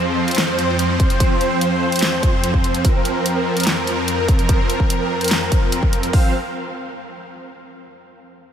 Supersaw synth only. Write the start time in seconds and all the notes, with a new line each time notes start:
Already playing: F2 F3 C4 C5
2.85 A#4
6.13 F3 C4 C5 F5